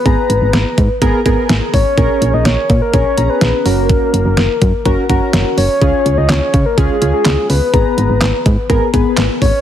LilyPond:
<<
  \new Staff \with { instrumentName = "Soft synth lead" } { \time 4/4 \key aes \dorian \tempo 4 = 125 ces''2~ ces''8 r4 des''8~ | des''8. ees''16 des''8. bes'16 des''8. ces''8. bes'8~ | bes'2~ bes'8 r4 des''8~ | des''8. ees''16 des''8. bes'16 aes'8. aes'8. ces''8~ |
ces''2~ ces''8 r4 des''8 | }
  \new Staff \with { instrumentName = "Synth keys" } { \time 4/4 \key aes \dorian <ces' aes' bes''>4. r8 <ces' aes' bes'>8 <ces' aes' bes'>4 r8 | <des' aes' bes'>4. r8 <des' aes' bes'>8 <des' aes' bes''>4 <des' ges' bes'>8~ | <des' ges' bes'>4 r4 <des' ges' bes'>8 <des' ges' bes'>4 r8 | <des' f' aes'>4. r8 <des' f' aes'>8 <des' f' aes'>4 r8 |
<ces' aes' bes''>4. r8 <ces' aes' bes'>8 <ces' aes' ces''>4 r8 | }
  \new Staff \with { instrumentName = "FM bass" } { \clef bass \time 4/4 \key aes \dorian aes,,16 r16 aes,,16 aes,,16 aes,,16 r16 aes,16 r16 aes,,16 r16 aes,,16 r16 aes,,16 r16 aes,,16 r16 | bes,,16 r16 bes,,16 bes,,16 bes,,16 r16 bes,16 r16 bes,,16 r16 bes,,16 r16 bes,,16 r16 ges,,8~ | ges,,16 r16 ges,,16 ges,,16 ges,,16 r16 ges,16 r16 ges,,16 r16 ges,,16 r16 ges,,16 r16 ges,,16 r16 | des,16 r16 des,16 des,16 des,16 r16 des16 r16 des,16 r16 des,16 r16 des,16 r16 des,16 r16 |
aes,,16 r16 aes,,16 aes,,16 aes,,16 r16 aes,16 r16 aes,,16 r16 aes,,16 r16 aes,,16 r16 aes,,16 r16 | }
  \new DrumStaff \with { instrumentName = "Drums" } \drummode { \time 4/4 <hh bd>8 hh8 <hh sn>8 <hh bd>8 <hh bd>8 <hh bd>8 <hh sn>8 <hho bd>8 | <hh bd>8 hh8 <hh sn>8 <hh bd>8 <hh bd>8 hh8 <hh sn>8 hho8 | <hh bd>8 hh8 <hh sn>8 <hh bd>8 <hh bd>8 <hh bd>8 <hh sn>8 hho8 | <hh bd>8 hh8 <hc hh sn>8 <hh bd>8 <hh bd>8 hh8 <hc hh sn>8 hho8 |
<hh bd>8 hh8 <hc hh sn>8 <hh bd>8 <hh bd>8 <hh bd>8 <hc hh sn>8 <hho bd>8 | }
>>